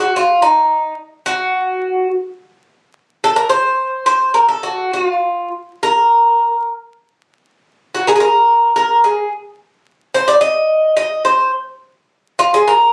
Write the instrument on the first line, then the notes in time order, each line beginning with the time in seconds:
bouzouki
0.00 F#4
0.16 F4
0.42 D#4
1.26 F#4
3.24 A4
3.36 A#4
3.49 C5
4.06 C5
4.34 A#4
4.49 A4
4.63 F#4
4.93 F4
5.83 A#4
7.95 F#4
8.07 G#4 A#4
8.16 G#4
8.20 A#4
8.76 A#4
9.04 G#4
10.14 C5
10.28 D5
10.41 D#5
10.97 D#5
11.25 C5
12.39 F4
12.54 G#4
12.68 A#4